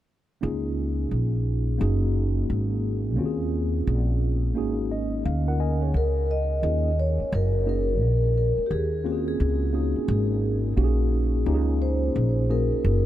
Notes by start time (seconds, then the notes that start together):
0.41 C#2 A#3 C#4 D#4 F4 G#4
1.11 A#1
1.78 F#1 A#3 C#4 D#4 F#4 G#4
2.50 G#1
3.16 D#2 A#3 C4 C#4 F4 F#4
3.26 G#4
3.87 A#1
4.55 G#1 A#3 C#4 D#4 F#4 G#4
4.92 D#5
5.25 D2 F5
5.48 F4 A#4 F#5
5.60 A#4 D#5 G#5
5.82 G#4 C#5
5.94 C#2 A#4
6.31 D#5
6.63 D#2 A#3 C#4 D#4 F4 G#4
6.99 C#5
7.20 muted upright bass stroke
7.32 F#1 A#4
7.66 A#3 C#4 D#4 F#4 G#4 A#4
8.01 A#1
8.38 A#4
8.58 muted upright bass stroke
8.66 G4
8.71 D#2 G#4
9.04 A#3 C4 C#4 F4 F#4 G4
9.12 G#4
9.28 G#4
9.40 C#2
9.73 A#3 C#4 D#4 F#4 G#4
9.96 muted upright bass stroke
10.08 G#1
10.76 A#1 A#3 C#4 D#4 F#4 G4
10.84 G#4
11.46 C#2 A#3 C#4 D#4 F4 G4
11.54 G#4
11.82 C5
12.16 A#1
12.49 A#3 C#4 D#4 F#4 G#4 A#4
12.72 muted upright bass stroke
12.84 F#1